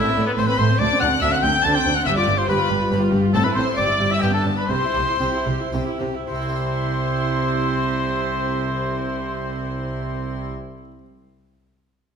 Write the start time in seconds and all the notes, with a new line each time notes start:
Already playing: A2 A3 C4 E4 E5
0.06 C4
0.16 A1 A2 A3
0.27 B3 C4 B4
0.37 A1 A2 A3 C4 E4 C5 C6
0.47 C4 B4 B5
0.57 A1 A2 A3 C5 C6
0.69 C4
0.79 D2 D4 D5 D6
0.90 C4
1.00 D2 D4 F#5 F#6
1.11 C4
1.21 D2 A3 C4 D4 F#4 E5 E6
1.32 C4 F#5 F#6
1.42 D2 D4 G5 G6
1.53 C4
1.63 D2 A3 C4 D4 F#4 A5 A6
1.73 C4 G5 G6
1.84 D2 D4
1.95 C4 F#5 F#6
2.05 G1 G2 G4 E5 E6
2.16 F4 D5 D6
2.27 G1 G2 G4
2.37 F4 C5 C6
2.48 G1 G2 D4 F4 G4 B4 B5
2.58 F4
2.69 G1 G2 G4
2.80 F4
2.91 G1 G2 D4 F4 G4
3.01 F4
3.12 G1 G2 G4
3.23 F4
3.33 A1 A2 C4 E4 A4 A5
3.44 E4 B4 B5
3.54 A1 A2 C4 C5 C6
3.66 E4
3.76 G1 G2 C4 E4 G4 D5 D6
3.88 E4
3.99 G1 G2 G4
4.10 E4 E5 E6
4.21 G1 G2 B3 D4 G4 G5
4.33 D4 A4 A5
4.45 G1 G2 B3
4.57 D4 B4 B5
4.68 C2 C3 G4 C5 C6
4.81 E4
4.94 C2 C3 G4
5.06 E4
5.19 C2 C3 C4 E4 G4
5.32 E4
5.45 C2 C3 G4
5.58 E4
5.72 C2 C3 C4 E4 G4
5.85 E4
5.99 C2 C3 G4
6.13 E4
6.27 C2 C3 E4 C5 C6
6.35 C4
6.42 E4
6.49 G4
6.56 E5